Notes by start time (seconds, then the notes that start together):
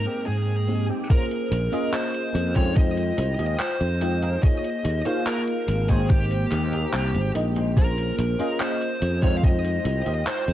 Already playing: G#3 A#3 C4 D#4 A#4 G5
0.05 G#3 C4 G4
0.26 G#2 G#4
0.67 G#3 A#3 C4 D#4 G4, muted clean electric guitar stroke
0.88 G#3 C4 G4
1.09 A#3 C#4 F4 G#4 A#4 C5, kick, closed hi-hat
1.31 closed hi-hat
1.51 A#1, muted clean electric guitar stroke, closed hi-hat
1.72 A#3 C#4 F4 G#4 A#4 C5 D#5, closed hi-hat
1.94 C5, clap, closed hi-hat
2.14 closed hi-hat
2.34 F2, muted clean electric guitar stroke, closed hi-hat
2.54 G#3 C#4 D#4 F4 G#4 A#4 C5 C#5 G5, kick, closed hi-hat
2.76 D#5, kick, closed hi-hat
2.97 closed hi-hat
3.17 C2, muted clean electric guitar stroke, closed hi-hat
3.38 D#2 F4 G4 G#4 D#5, closed hi-hat
3.60 C5, clap, closed hi-hat
3.81 F2, closed hi-hat
4.01 G#3 D#4 F4 D#5 G5, muted clean electric guitar stroke, closed hi-hat
4.22 F4 G4 G#4 A#4, closed hi-hat
4.42 A#3 D#4 F4 G#4 C#5 D#5, kick, closed hi-hat
4.64 closed hi-hat
4.84 D#2, muted clean electric guitar stroke, closed hi-hat
5.05 A#3 D#4 F4 G#4 C5 C#5 F5, closed hi-hat
5.26 A#4, clap, closed hi-hat
5.47 closed hi-hat
5.67 G#1, muted clean electric guitar stroke, closed hi-hat
5.88 G#3 A#3 D#4 F4 G#4 C5 C#5 G5, kick, closed hi-hat
6.10 G4, kick, closed hi-hat
6.31 closed hi-hat
6.51 D#2, muted clean electric guitar stroke, clap, closed hi-hat
6.72 D#4 G4 G#4 A#4, closed hi-hat
6.93 C2, clap, closed hi-hat
7.14 G#1, closed hi-hat
7.34 A#1 G#3 A#3 D#4 D#5 G5, muted clean electric guitar stroke, closed hi-hat
7.55 D#4 G4 G#4 C5, closed hi-hat
7.76 A#3 C#4 F4 G#4 A#4 C5, kick, closed hi-hat
7.98 closed hi-hat
8.18 A#1, muted clean electric guitar stroke, closed hi-hat
8.39 A#3 C#4 F4 G#4 A#4 C5 D#5, closed hi-hat
8.60 C5, clap, closed hi-hat
8.81 closed hi-hat
9.01 F2, muted clean electric guitar stroke, closed hi-hat
9.21 G#3 C#4 D#4 F4 G#4 A#4 C5 C#5 G5, kick, closed hi-hat
9.37 F5
9.43 D#5, kick, closed hi-hat
9.65 closed hi-hat
9.84 C2, muted clean electric guitar stroke, closed hi-hat
10.06 D#2 F4 G4 G#4 D#5, closed hi-hat
10.27 C5, clap, closed hi-hat
10.48 F2, closed hi-hat